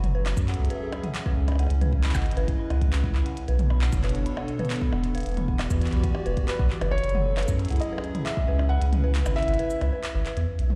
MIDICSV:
0, 0, Header, 1, 8, 480
1, 0, Start_track
1, 0, Tempo, 444444
1, 1719, Time_signature, 4, 2, 24, 8
1, 11614, End_track
2, 0, Start_track
2, 0, Title_t, "Synth bell"
2, 0, Program_c, 0, 98
2, 160, Note_on_c, 0, 71, 105
2, 243, Note_off_c, 0, 71, 0
2, 399, Note_on_c, 0, 83, 78
2, 514, Note_off_c, 0, 83, 0
2, 520, Note_on_c, 0, 78, 72
2, 570, Note_off_c, 0, 78, 0
2, 759, Note_on_c, 0, 71, 111
2, 843, Note_off_c, 0, 71, 0
2, 1000, Note_on_c, 0, 83, 77
2, 1114, Note_off_c, 0, 83, 0
2, 1120, Note_on_c, 0, 78, 78
2, 1170, Note_off_c, 0, 78, 0
2, 1359, Note_on_c, 0, 71, 97
2, 1443, Note_off_c, 0, 71, 0
2, 1599, Note_on_c, 0, 83, 72
2, 1713, Note_off_c, 0, 83, 0
2, 1719, Note_on_c, 0, 78, 84
2, 1769, Note_off_c, 0, 78, 0
2, 1959, Note_on_c, 0, 71, 97
2, 2043, Note_off_c, 0, 71, 0
2, 2200, Note_on_c, 0, 83, 78
2, 2314, Note_off_c, 0, 83, 0
2, 2320, Note_on_c, 0, 78, 74
2, 2370, Note_off_c, 0, 78, 0
2, 2560, Note_on_c, 0, 71, 105
2, 2643, Note_off_c, 0, 71, 0
2, 2800, Note_on_c, 0, 83, 78
2, 2914, Note_off_c, 0, 83, 0
2, 2919, Note_on_c, 0, 78, 79
2, 2970, Note_off_c, 0, 78, 0
2, 3160, Note_on_c, 0, 71, 102
2, 3243, Note_off_c, 0, 71, 0
2, 3400, Note_on_c, 0, 83, 81
2, 3514, Note_off_c, 0, 83, 0
2, 3520, Note_on_c, 0, 78, 74
2, 3570, Note_off_c, 0, 78, 0
2, 3761, Note_on_c, 0, 71, 105
2, 3844, Note_off_c, 0, 71, 0
2, 4001, Note_on_c, 0, 83, 77
2, 4114, Note_off_c, 0, 83, 0
2, 4121, Note_on_c, 0, 78, 77
2, 4171, Note_off_c, 0, 78, 0
2, 4362, Note_on_c, 0, 71, 91
2, 4444, Note_off_c, 0, 71, 0
2, 4601, Note_on_c, 0, 83, 85
2, 4715, Note_off_c, 0, 83, 0
2, 4723, Note_on_c, 0, 78, 81
2, 4771, Note_off_c, 0, 78, 0
2, 4962, Note_on_c, 0, 71, 100
2, 5044, Note_off_c, 0, 71, 0
2, 5202, Note_on_c, 0, 83, 76
2, 5315, Note_off_c, 0, 83, 0
2, 5321, Note_on_c, 0, 78, 78
2, 5370, Note_off_c, 0, 78, 0
2, 5560, Note_on_c, 0, 71, 106
2, 5644, Note_off_c, 0, 71, 0
2, 5801, Note_on_c, 0, 83, 76
2, 5914, Note_off_c, 0, 83, 0
2, 5920, Note_on_c, 0, 78, 79
2, 5970, Note_off_c, 0, 78, 0
2, 6161, Note_on_c, 0, 71, 100
2, 6244, Note_off_c, 0, 71, 0
2, 6400, Note_on_c, 0, 83, 79
2, 6514, Note_off_c, 0, 83, 0
2, 6521, Note_on_c, 0, 78, 85
2, 6571, Note_off_c, 0, 78, 0
2, 6760, Note_on_c, 0, 71, 102
2, 6844, Note_off_c, 0, 71, 0
2, 7000, Note_on_c, 0, 83, 82
2, 7114, Note_off_c, 0, 83, 0
2, 7120, Note_on_c, 0, 78, 75
2, 7170, Note_off_c, 0, 78, 0
2, 7360, Note_on_c, 0, 71, 98
2, 7443, Note_off_c, 0, 71, 0
2, 7600, Note_on_c, 0, 83, 83
2, 7714, Note_off_c, 0, 83, 0
2, 7720, Note_on_c, 0, 78, 78
2, 7770, Note_off_c, 0, 78, 0
2, 7961, Note_on_c, 0, 71, 104
2, 8044, Note_off_c, 0, 71, 0
2, 8201, Note_on_c, 0, 83, 77
2, 8314, Note_off_c, 0, 83, 0
2, 8321, Note_on_c, 0, 78, 77
2, 8370, Note_off_c, 0, 78, 0
2, 8561, Note_on_c, 0, 71, 108
2, 8644, Note_off_c, 0, 71, 0
2, 8802, Note_on_c, 0, 83, 79
2, 8915, Note_off_c, 0, 83, 0
2, 8920, Note_on_c, 0, 78, 87
2, 8970, Note_off_c, 0, 78, 0
2, 9161, Note_on_c, 0, 71, 104
2, 9244, Note_off_c, 0, 71, 0
2, 9400, Note_on_c, 0, 83, 89
2, 9514, Note_off_c, 0, 83, 0
2, 9519, Note_on_c, 0, 78, 80
2, 9570, Note_off_c, 0, 78, 0
2, 9760, Note_on_c, 0, 71, 107
2, 9843, Note_off_c, 0, 71, 0
2, 10000, Note_on_c, 0, 83, 77
2, 10114, Note_off_c, 0, 83, 0
2, 10119, Note_on_c, 0, 78, 72
2, 10170, Note_off_c, 0, 78, 0
2, 10360, Note_on_c, 0, 71, 107
2, 10443, Note_off_c, 0, 71, 0
2, 10600, Note_on_c, 0, 71, 77
2, 10706, Note_off_c, 0, 71, 0
2, 10719, Note_on_c, 0, 71, 80
2, 10803, Note_off_c, 0, 71, 0
2, 10958, Note_on_c, 0, 71, 80
2, 11042, Note_off_c, 0, 71, 0
2, 11080, Note_on_c, 0, 71, 82
2, 11163, Note_off_c, 0, 71, 0
2, 11199, Note_on_c, 0, 71, 76
2, 11313, Note_off_c, 0, 71, 0
2, 11614, End_track
3, 0, Start_track
3, 0, Title_t, "Felt piano"
3, 0, Program_c, 1, 0
3, 6987, Note_on_c, 1, 71, 96
3, 7466, Note_on_c, 1, 73, 122
3, 7488, Note_off_c, 1, 71, 0
3, 8150, Note_off_c, 1, 73, 0
3, 8429, Note_on_c, 1, 75, 91
3, 8908, Note_on_c, 1, 76, 97
3, 8929, Note_off_c, 1, 75, 0
3, 9386, Note_on_c, 1, 78, 108
3, 9408, Note_off_c, 1, 76, 0
3, 9839, Note_off_c, 1, 78, 0
3, 10106, Note_on_c, 1, 76, 127
3, 11029, Note_off_c, 1, 76, 0
3, 11614, End_track
4, 0, Start_track
4, 0, Title_t, "Synth texture"
4, 0, Program_c, 2, 99
4, 11321, Note_on_c, 2, 64, 80
4, 11321, Note_on_c, 2, 76, 76
4, 11614, Note_off_c, 2, 64, 0
4, 11614, Note_off_c, 2, 76, 0
4, 11614, End_track
5, 0, Start_track
5, 0, Title_t, "Analog synth pad"
5, 0, Program_c, 3, 89
5, 0, Note_on_c, 3, 54, 78
5, 0, Note_on_c, 3, 59, 81
5, 0, Note_on_c, 3, 66, 90
5, 14, Note_on_c, 3, 61, 76
5, 265, Note_on_c, 3, 68, 87
5, 307, Note_on_c, 3, 69, 77
5, 471, Note_off_c, 3, 59, 0
5, 472, Note_off_c, 3, 66, 0
5, 558, Note_on_c, 3, 76, 86
5, 1479, Note_on_c, 3, 49, 86
5, 1481, Note_off_c, 3, 54, 0
5, 1481, Note_off_c, 3, 76, 0
5, 1482, Note_off_c, 3, 69, 0
5, 1692, Note_on_c, 3, 64, 74
5, 1956, Note_on_c, 3, 71, 85
5, 1982, Note_on_c, 3, 75, 86
5, 2346, Note_off_c, 3, 68, 0
5, 3639, Note_off_c, 3, 49, 0
5, 3640, Note_off_c, 3, 75, 0
5, 3642, Note_off_c, 3, 61, 0
5, 3642, Note_on_c, 3, 47, 94
5, 3751, Note_on_c, 3, 59, 79
5, 3970, Note_on_c, 3, 62, 81
5, 3978, Note_on_c, 3, 73, 93
5, 4202, Note_on_c, 3, 69, 82
5, 4354, Note_off_c, 3, 64, 0
5, 4409, Note_off_c, 3, 71, 0
5, 5561, Note_off_c, 3, 47, 0
5, 5561, Note_off_c, 3, 73, 0
5, 5561, Note_on_c, 3, 52, 87
5, 5827, Note_on_c, 3, 74, 91
5, 5835, Note_on_c, 3, 67, 97
5, 5931, Note_on_c, 3, 66, 101
5, 6328, Note_off_c, 3, 62, 0
5, 6329, Note_off_c, 3, 69, 0
5, 7479, Note_off_c, 3, 74, 0
5, 7480, Note_off_c, 3, 67, 0
5, 7481, Note_off_c, 3, 52, 0
5, 7481, Note_on_c, 3, 54, 87
5, 7578, Note_on_c, 3, 69, 91
5, 7759, Note_on_c, 3, 61, 90
5, 7856, Note_on_c, 3, 68, 100
5, 7905, Note_on_c, 3, 64, 79
5, 8151, Note_off_c, 3, 59, 0
5, 8153, Note_off_c, 3, 66, 0
5, 9159, Note_off_c, 3, 64, 0
5, 9159, Note_off_c, 3, 69, 0
5, 9160, Note_off_c, 3, 54, 0
5, 9162, Note_on_c, 3, 49, 91
5, 9360, Note_on_c, 3, 71, 97
5, 9497, Note_on_c, 3, 64, 90
5, 9930, Note_on_c, 3, 76, 79
5, 10023, Note_off_c, 3, 68, 0
5, 11319, Note_off_c, 3, 76, 0
5, 11320, Note_off_c, 3, 61, 0
5, 11320, Note_off_c, 3, 64, 0
5, 11320, Note_off_c, 3, 71, 0
5, 11321, Note_off_c, 3, 49, 0
5, 11614, End_track
6, 0, Start_track
6, 0, Title_t, "Sub bass"
6, 0, Program_c, 4, 38
6, 0, Note_on_c, 4, 30, 96
6, 371, Note_off_c, 4, 30, 0
6, 399, Note_on_c, 4, 42, 107
6, 603, Note_off_c, 4, 42, 0
6, 640, Note_on_c, 4, 37, 92
6, 741, Note_off_c, 4, 37, 0
6, 1480, Note_on_c, 4, 37, 90
6, 1811, Note_off_c, 4, 37, 0
6, 1840, Note_on_c, 4, 37, 103
6, 2291, Note_off_c, 4, 37, 0
6, 2320, Note_on_c, 4, 32, 105
6, 2523, Note_off_c, 4, 32, 0
6, 2560, Note_on_c, 4, 32, 94
6, 2661, Note_off_c, 4, 32, 0
6, 2921, Note_on_c, 4, 37, 91
6, 3491, Note_off_c, 4, 37, 0
6, 3762, Note_on_c, 4, 35, 100
6, 4212, Note_off_c, 4, 35, 0
6, 4240, Note_on_c, 4, 30, 102
6, 4443, Note_off_c, 4, 30, 0
6, 4482, Note_on_c, 4, 30, 93
6, 4583, Note_off_c, 4, 30, 0
6, 5321, Note_on_c, 4, 28, 89
6, 5651, Note_off_c, 4, 28, 0
6, 5681, Note_on_c, 4, 28, 95
6, 6131, Note_off_c, 4, 28, 0
6, 6161, Note_on_c, 4, 40, 106
6, 6363, Note_off_c, 4, 40, 0
6, 6401, Note_on_c, 4, 35, 92
6, 6502, Note_off_c, 4, 35, 0
6, 6760, Note_on_c, 4, 28, 86
6, 6861, Note_off_c, 4, 28, 0
6, 7121, Note_on_c, 4, 35, 83
6, 7222, Note_off_c, 4, 35, 0
6, 7360, Note_on_c, 4, 30, 100
6, 7563, Note_off_c, 4, 30, 0
6, 7600, Note_on_c, 4, 30, 99
6, 8050, Note_off_c, 4, 30, 0
6, 8081, Note_on_c, 4, 42, 109
6, 8284, Note_off_c, 4, 42, 0
6, 8321, Note_on_c, 4, 37, 95
6, 8422, Note_off_c, 4, 37, 0
6, 9161, Note_on_c, 4, 37, 92
6, 9491, Note_off_c, 4, 37, 0
6, 9520, Note_on_c, 4, 37, 101
6, 9970, Note_off_c, 4, 37, 0
6, 10000, Note_on_c, 4, 32, 104
6, 10203, Note_off_c, 4, 32, 0
6, 10240, Note_on_c, 4, 32, 97
6, 10342, Note_off_c, 4, 32, 0
6, 10600, Note_on_c, 4, 37, 84
6, 10702, Note_off_c, 4, 37, 0
6, 10959, Note_on_c, 4, 32, 87
6, 11061, Note_off_c, 4, 32, 0
6, 11200, Note_on_c, 4, 40, 107
6, 11301, Note_off_c, 4, 40, 0
6, 11440, Note_on_c, 4, 35, 94
6, 11614, Note_off_c, 4, 35, 0
6, 11614, End_track
7, 0, Start_track
7, 0, Title_t, "Percussion blips"
7, 280, Note_on_c, 9, 60, 53
7, 388, Note_off_c, 9, 60, 0
7, 998, Note_on_c, 9, 60, 82
7, 1106, Note_off_c, 9, 60, 0
7, 1598, Note_on_c, 9, 60, 51
7, 1640, Note_off_c, 9, 60, 0
7, 1640, Note_on_c, 9, 60, 41
7, 1679, Note_off_c, 9, 60, 0
7, 1679, Note_on_c, 9, 60, 34
7, 1719, Note_off_c, 9, 60, 0
7, 1719, Note_on_c, 9, 60, 26
7, 1759, Note_off_c, 9, 60, 0
7, 1759, Note_on_c, 9, 60, 22
7, 1799, Note_off_c, 9, 60, 0
7, 1799, Note_on_c, 9, 60, 18
7, 1907, Note_off_c, 9, 60, 0
7, 2319, Note_on_c, 9, 60, 85
7, 2427, Note_off_c, 9, 60, 0
7, 2920, Note_on_c, 9, 60, 53
7, 3028, Note_off_c, 9, 60, 0
7, 3999, Note_on_c, 9, 60, 49
7, 4107, Note_off_c, 9, 60, 0
7, 4720, Note_on_c, 9, 60, 74
7, 4828, Note_off_c, 9, 60, 0
7, 5319, Note_on_c, 9, 60, 52
7, 5427, Note_off_c, 9, 60, 0
7, 6042, Note_on_c, 9, 60, 81
7, 6150, Note_off_c, 9, 60, 0
7, 6638, Note_on_c, 9, 60, 53
7, 6746, Note_off_c, 9, 60, 0
7, 7359, Note_on_c, 9, 60, 82
7, 7467, Note_off_c, 9, 60, 0
7, 7960, Note_on_c, 9, 60, 57
7, 8068, Note_off_c, 9, 60, 0
7, 8619, Note_on_c, 9, 60, 80
7, 8727, Note_off_c, 9, 60, 0
7, 9280, Note_on_c, 9, 60, 56
7, 9388, Note_off_c, 9, 60, 0
7, 10001, Note_on_c, 9, 60, 92
7, 10109, Note_off_c, 9, 60, 0
7, 10598, Note_on_c, 9, 60, 59
7, 10706, Note_off_c, 9, 60, 0
7, 11614, End_track
8, 0, Start_track
8, 0, Title_t, "Drums"
8, 41, Note_on_c, 9, 42, 39
8, 41, Note_on_c, 9, 45, 77
8, 149, Note_off_c, 9, 42, 0
8, 149, Note_off_c, 9, 45, 0
8, 280, Note_on_c, 9, 39, 127
8, 280, Note_on_c, 9, 42, 73
8, 388, Note_off_c, 9, 39, 0
8, 388, Note_off_c, 9, 42, 0
8, 399, Note_on_c, 9, 36, 127
8, 401, Note_on_c, 9, 69, 86
8, 507, Note_off_c, 9, 36, 0
8, 509, Note_off_c, 9, 69, 0
8, 520, Note_on_c, 9, 39, 61
8, 520, Note_on_c, 9, 42, 48
8, 581, Note_off_c, 9, 42, 0
8, 581, Note_on_c, 9, 42, 67
8, 628, Note_off_c, 9, 39, 0
8, 689, Note_off_c, 9, 42, 0
8, 699, Note_on_c, 9, 42, 54
8, 759, Note_off_c, 9, 42, 0
8, 759, Note_on_c, 9, 42, 66
8, 867, Note_off_c, 9, 42, 0
8, 998, Note_on_c, 9, 42, 40
8, 1106, Note_off_c, 9, 42, 0
8, 1119, Note_on_c, 9, 42, 48
8, 1119, Note_on_c, 9, 45, 72
8, 1227, Note_off_c, 9, 42, 0
8, 1227, Note_off_c, 9, 45, 0
8, 1238, Note_on_c, 9, 39, 123
8, 1238, Note_on_c, 9, 42, 70
8, 1346, Note_off_c, 9, 39, 0
8, 1346, Note_off_c, 9, 42, 0
8, 1359, Note_on_c, 9, 36, 126
8, 1467, Note_off_c, 9, 36, 0
8, 1598, Note_on_c, 9, 42, 55
8, 1706, Note_off_c, 9, 42, 0
8, 1719, Note_on_c, 9, 42, 63
8, 1827, Note_off_c, 9, 42, 0
8, 1839, Note_on_c, 9, 42, 52
8, 1947, Note_off_c, 9, 42, 0
8, 1960, Note_on_c, 9, 42, 34
8, 1960, Note_on_c, 9, 45, 84
8, 2068, Note_off_c, 9, 42, 0
8, 2068, Note_off_c, 9, 45, 0
8, 2079, Note_on_c, 9, 36, 85
8, 2187, Note_off_c, 9, 36, 0
8, 2199, Note_on_c, 9, 39, 119
8, 2199, Note_on_c, 9, 42, 71
8, 2260, Note_off_c, 9, 39, 0
8, 2260, Note_on_c, 9, 39, 106
8, 2307, Note_off_c, 9, 42, 0
8, 2319, Note_off_c, 9, 39, 0
8, 2319, Note_on_c, 9, 39, 91
8, 2319, Note_on_c, 9, 69, 88
8, 2320, Note_on_c, 9, 36, 122
8, 2380, Note_off_c, 9, 39, 0
8, 2380, Note_on_c, 9, 39, 70
8, 2427, Note_off_c, 9, 69, 0
8, 2428, Note_off_c, 9, 36, 0
8, 2440, Note_on_c, 9, 42, 47
8, 2488, Note_off_c, 9, 39, 0
8, 2499, Note_off_c, 9, 42, 0
8, 2499, Note_on_c, 9, 42, 64
8, 2559, Note_off_c, 9, 42, 0
8, 2559, Note_on_c, 9, 42, 52
8, 2667, Note_off_c, 9, 42, 0
8, 2680, Note_on_c, 9, 36, 108
8, 2680, Note_on_c, 9, 42, 66
8, 2788, Note_off_c, 9, 36, 0
8, 2788, Note_off_c, 9, 42, 0
8, 2920, Note_on_c, 9, 42, 36
8, 3028, Note_off_c, 9, 42, 0
8, 3040, Note_on_c, 9, 36, 111
8, 3041, Note_on_c, 9, 42, 47
8, 3148, Note_off_c, 9, 36, 0
8, 3149, Note_off_c, 9, 42, 0
8, 3162, Note_on_c, 9, 39, 127
8, 3162, Note_on_c, 9, 42, 63
8, 3270, Note_off_c, 9, 39, 0
8, 3270, Note_off_c, 9, 42, 0
8, 3280, Note_on_c, 9, 36, 118
8, 3388, Note_off_c, 9, 36, 0
8, 3400, Note_on_c, 9, 39, 63
8, 3508, Note_off_c, 9, 39, 0
8, 3520, Note_on_c, 9, 42, 56
8, 3628, Note_off_c, 9, 42, 0
8, 3640, Note_on_c, 9, 42, 59
8, 3748, Note_off_c, 9, 42, 0
8, 3760, Note_on_c, 9, 42, 52
8, 3868, Note_off_c, 9, 42, 0
8, 3879, Note_on_c, 9, 42, 34
8, 3879, Note_on_c, 9, 45, 83
8, 3987, Note_off_c, 9, 42, 0
8, 3987, Note_off_c, 9, 45, 0
8, 4119, Note_on_c, 9, 39, 125
8, 4227, Note_off_c, 9, 39, 0
8, 4240, Note_on_c, 9, 36, 121
8, 4240, Note_on_c, 9, 42, 68
8, 4240, Note_on_c, 9, 69, 93
8, 4348, Note_off_c, 9, 36, 0
8, 4348, Note_off_c, 9, 42, 0
8, 4348, Note_off_c, 9, 69, 0
8, 4360, Note_on_c, 9, 39, 60
8, 4360, Note_on_c, 9, 42, 45
8, 4420, Note_off_c, 9, 42, 0
8, 4420, Note_on_c, 9, 42, 61
8, 4468, Note_off_c, 9, 39, 0
8, 4480, Note_off_c, 9, 42, 0
8, 4480, Note_on_c, 9, 42, 50
8, 4588, Note_off_c, 9, 42, 0
8, 4601, Note_on_c, 9, 42, 61
8, 4709, Note_off_c, 9, 42, 0
8, 4840, Note_on_c, 9, 42, 36
8, 4948, Note_off_c, 9, 42, 0
8, 4960, Note_on_c, 9, 42, 20
8, 4960, Note_on_c, 9, 45, 80
8, 5019, Note_off_c, 9, 42, 0
8, 5019, Note_on_c, 9, 42, 26
8, 5068, Note_off_c, 9, 45, 0
8, 5079, Note_off_c, 9, 42, 0
8, 5079, Note_on_c, 9, 39, 119
8, 5079, Note_on_c, 9, 42, 64
8, 5139, Note_off_c, 9, 42, 0
8, 5139, Note_on_c, 9, 42, 43
8, 5187, Note_off_c, 9, 39, 0
8, 5200, Note_on_c, 9, 36, 123
8, 5247, Note_off_c, 9, 42, 0
8, 5308, Note_off_c, 9, 36, 0
8, 5439, Note_on_c, 9, 42, 54
8, 5547, Note_off_c, 9, 42, 0
8, 5560, Note_on_c, 9, 42, 58
8, 5591, Note_off_c, 9, 42, 0
8, 5591, Note_on_c, 9, 42, 51
8, 5621, Note_off_c, 9, 42, 0
8, 5621, Note_on_c, 9, 42, 41
8, 5650, Note_off_c, 9, 42, 0
8, 5650, Note_on_c, 9, 42, 33
8, 5682, Note_off_c, 9, 42, 0
8, 5682, Note_on_c, 9, 42, 53
8, 5711, Note_off_c, 9, 42, 0
8, 5711, Note_on_c, 9, 42, 22
8, 5741, Note_off_c, 9, 42, 0
8, 5741, Note_on_c, 9, 42, 18
8, 5771, Note_off_c, 9, 42, 0
8, 5771, Note_on_c, 9, 42, 15
8, 5801, Note_off_c, 9, 42, 0
8, 5801, Note_on_c, 9, 42, 35
8, 5801, Note_on_c, 9, 45, 85
8, 5909, Note_off_c, 9, 42, 0
8, 5909, Note_off_c, 9, 45, 0
8, 5920, Note_on_c, 9, 36, 82
8, 6028, Note_off_c, 9, 36, 0
8, 6042, Note_on_c, 9, 39, 122
8, 6042, Note_on_c, 9, 42, 66
8, 6150, Note_off_c, 9, 39, 0
8, 6150, Note_off_c, 9, 42, 0
8, 6160, Note_on_c, 9, 36, 112
8, 6160, Note_on_c, 9, 69, 94
8, 6268, Note_off_c, 9, 36, 0
8, 6268, Note_off_c, 9, 69, 0
8, 6280, Note_on_c, 9, 42, 48
8, 6309, Note_on_c, 9, 39, 45
8, 6340, Note_off_c, 9, 39, 0
8, 6340, Note_off_c, 9, 42, 0
8, 6340, Note_on_c, 9, 39, 37
8, 6340, Note_on_c, 9, 42, 61
8, 6370, Note_off_c, 9, 39, 0
8, 6370, Note_on_c, 9, 39, 32
8, 6400, Note_off_c, 9, 39, 0
8, 6400, Note_off_c, 9, 42, 0
8, 6400, Note_on_c, 9, 39, 27
8, 6400, Note_on_c, 9, 42, 52
8, 6430, Note_off_c, 9, 39, 0
8, 6430, Note_on_c, 9, 39, 21
8, 6460, Note_off_c, 9, 39, 0
8, 6460, Note_on_c, 9, 39, 17
8, 6490, Note_off_c, 9, 39, 0
8, 6490, Note_on_c, 9, 39, 14
8, 6508, Note_off_c, 9, 42, 0
8, 6519, Note_on_c, 9, 42, 61
8, 6521, Note_on_c, 9, 36, 104
8, 6598, Note_off_c, 9, 39, 0
8, 6627, Note_off_c, 9, 42, 0
8, 6629, Note_off_c, 9, 36, 0
8, 6759, Note_on_c, 9, 42, 37
8, 6867, Note_off_c, 9, 42, 0
8, 6879, Note_on_c, 9, 42, 44
8, 6881, Note_on_c, 9, 36, 99
8, 6987, Note_off_c, 9, 42, 0
8, 6989, Note_off_c, 9, 36, 0
8, 6999, Note_on_c, 9, 39, 117
8, 6999, Note_on_c, 9, 42, 64
8, 7107, Note_off_c, 9, 39, 0
8, 7107, Note_off_c, 9, 42, 0
8, 7121, Note_on_c, 9, 36, 117
8, 7229, Note_off_c, 9, 36, 0
8, 7239, Note_on_c, 9, 39, 60
8, 7347, Note_off_c, 9, 39, 0
8, 7359, Note_on_c, 9, 42, 52
8, 7467, Note_off_c, 9, 42, 0
8, 7539, Note_on_c, 9, 42, 63
8, 7599, Note_off_c, 9, 42, 0
8, 7599, Note_on_c, 9, 42, 54
8, 7659, Note_off_c, 9, 42, 0
8, 7659, Note_on_c, 9, 42, 38
8, 7719, Note_on_c, 9, 45, 87
8, 7767, Note_off_c, 9, 42, 0
8, 7827, Note_off_c, 9, 45, 0
8, 7960, Note_on_c, 9, 39, 121
8, 8020, Note_on_c, 9, 42, 72
8, 8068, Note_off_c, 9, 39, 0
8, 8079, Note_on_c, 9, 69, 93
8, 8080, Note_on_c, 9, 36, 115
8, 8128, Note_off_c, 9, 42, 0
8, 8187, Note_off_c, 9, 69, 0
8, 8188, Note_off_c, 9, 36, 0
8, 8202, Note_on_c, 9, 42, 46
8, 8260, Note_off_c, 9, 42, 0
8, 8260, Note_on_c, 9, 42, 59
8, 8300, Note_off_c, 9, 42, 0
8, 8300, Note_on_c, 9, 42, 51
8, 8321, Note_off_c, 9, 42, 0
8, 8321, Note_on_c, 9, 42, 52
8, 8341, Note_off_c, 9, 42, 0
8, 8341, Note_on_c, 9, 42, 40
8, 8381, Note_off_c, 9, 42, 0
8, 8381, Note_on_c, 9, 42, 33
8, 8421, Note_off_c, 9, 42, 0
8, 8421, Note_on_c, 9, 42, 28
8, 8441, Note_off_c, 9, 42, 0
8, 8441, Note_on_c, 9, 42, 66
8, 8460, Note_off_c, 9, 42, 0
8, 8460, Note_on_c, 9, 42, 22
8, 8568, Note_off_c, 9, 42, 0
8, 8681, Note_on_c, 9, 42, 39
8, 8789, Note_off_c, 9, 42, 0
8, 8801, Note_on_c, 9, 42, 49
8, 8801, Note_on_c, 9, 45, 82
8, 8909, Note_off_c, 9, 42, 0
8, 8909, Note_off_c, 9, 45, 0
8, 8920, Note_on_c, 9, 39, 121
8, 8920, Note_on_c, 9, 42, 65
8, 9028, Note_off_c, 9, 39, 0
8, 9028, Note_off_c, 9, 42, 0
8, 9040, Note_on_c, 9, 36, 116
8, 9148, Note_off_c, 9, 36, 0
8, 9521, Note_on_c, 9, 42, 70
8, 9629, Note_off_c, 9, 42, 0
8, 9641, Note_on_c, 9, 42, 39
8, 9641, Note_on_c, 9, 45, 86
8, 9749, Note_off_c, 9, 42, 0
8, 9749, Note_off_c, 9, 45, 0
8, 9880, Note_on_c, 9, 39, 125
8, 9880, Note_on_c, 9, 42, 72
8, 9988, Note_off_c, 9, 39, 0
8, 9988, Note_off_c, 9, 42, 0
8, 10001, Note_on_c, 9, 69, 83
8, 10109, Note_off_c, 9, 69, 0
8, 10121, Note_on_c, 9, 39, 56
8, 10121, Note_on_c, 9, 42, 23
8, 10180, Note_off_c, 9, 42, 0
8, 10180, Note_on_c, 9, 42, 67
8, 10229, Note_off_c, 9, 39, 0
8, 10239, Note_off_c, 9, 42, 0
8, 10239, Note_on_c, 9, 42, 55
8, 10300, Note_off_c, 9, 42, 0
8, 10300, Note_on_c, 9, 42, 44
8, 10360, Note_off_c, 9, 42, 0
8, 10360, Note_on_c, 9, 42, 63
8, 10468, Note_off_c, 9, 42, 0
8, 10479, Note_on_c, 9, 69, 61
8, 10587, Note_off_c, 9, 69, 0
8, 10598, Note_on_c, 9, 42, 39
8, 10706, Note_off_c, 9, 42, 0
8, 10839, Note_on_c, 9, 39, 122
8, 10839, Note_on_c, 9, 42, 71
8, 10947, Note_off_c, 9, 39, 0
8, 10947, Note_off_c, 9, 42, 0
8, 11078, Note_on_c, 9, 39, 60
8, 11078, Note_on_c, 9, 42, 40
8, 11186, Note_off_c, 9, 39, 0
8, 11186, Note_off_c, 9, 42, 0
8, 11197, Note_on_c, 9, 42, 57
8, 11305, Note_off_c, 9, 42, 0
8, 11438, Note_on_c, 9, 42, 56
8, 11546, Note_off_c, 9, 42, 0
8, 11557, Note_on_c, 9, 45, 90
8, 11614, Note_off_c, 9, 45, 0
8, 11614, End_track
0, 0, End_of_file